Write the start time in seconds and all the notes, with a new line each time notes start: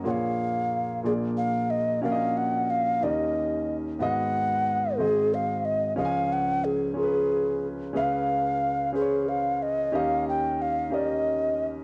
0.04 A#1 A#2 A#3 F4 G#4 C#5 F#5
0.11 F5
1.03 A#1 A#2 A#3 F4 G#4 D5
1.37 F5
1.70 D#5
2.02 A#1 A#2 C#4 F#4 A#4 D5 F5
2.12 D#5
2.37 F#5
2.70 F5
3.01 D#2 D#3 C#4 G4 A#4 D#5
3.99 G#1 G#2 B3 F#4 G#4 D#5 F#5
4.98 G#1 G#2 C4 F#4 G#4 D#5
5.34 F5
5.65 D#5
5.96 C#2 C#3 F3 C#4 G#4 D#5 F5
6.05 G#5
6.33 F#5
6.65 G#4
6.94 C#4 F4 G#4 A#4
7.03 B4
7.93 C#2 C#3 C#4 G#4 B4 F5
8.93 C#4 G#4 B4 C5
9.02 C#5
9.29 F5
9.63 D#5
9.92 D#2 D#3 C#4 G4 A#4 D#5 F5
10.29 G5
10.62 F5
10.90 C#4 G4 A#4 D5 D#5
11.08 D#5